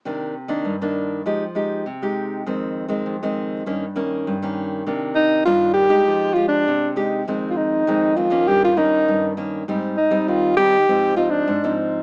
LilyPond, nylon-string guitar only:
\new Staff \with { instrumentName = "Nylon-string guitar" } { \clef bass \time 4/4 \key c \minor \tempo 4 = 100 << { <ees bes d'>8 r16 <ees bes d'>8 <ees bes d'>8. <aes ees' g'>16 r16 <aes ees' g'>8 r16 <aes ees' g'>8. | <ees aes c'>8. <ees aes c'>8 <ees aes c'>8. <ees bes des'>16 r16 <ees bes des'>8. <ees bes des'>8. | <ees bes d'>4 <ees bes d'>8. <aes ees' g'>8. <aes g'>4 <aes ees' g'>8 | <ees aes c'>4 <ees aes c'>8 <ees aes c'>16 <ees bes des'>8. <ees bes des'>4 <ees bes des'>8 |
<g c' ees'>8 r16 <g c' ees'>8. <g c' ees'>16 r16 <f c' ees'>8 <f c' ees'>8. <f c' ees'>8. | } \\ { c4 g,4 f4 c4 | f,4 f,4 g,4 g,4 | c4 g,4 f4 c4 | f,4 f,4 g,4 g,4 |
aes,4 ees4 aes,4 aes,4 | } >> }